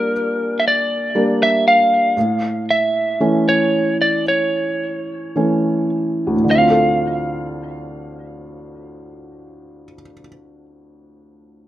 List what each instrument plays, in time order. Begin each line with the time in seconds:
Already playing: felt piano A#2 G3 A#3 D4, lead electric guitar A#4
0.60 lead electric guitar E5
0.68 lead electric guitar D5
1.15 felt piano G3 A#3 D4
1.43 lead electric guitar E5
1.68 lead electric guitar F5
2.17 felt piano A2
2.71 lead electric guitar E5
3.20 felt piano E3 A3 C#4
3.49 lead electric guitar C#5
4.02 lead electric guitar D5
4.28 lead electric guitar C#5
5.36 felt piano E3 A3 C#4
6.27 felt piano D2
6.36 felt piano A2
6.44 felt piano D3
6.51 felt piano C4, lead electric guitar F5
6.61 felt piano F4
6.70 felt piano A4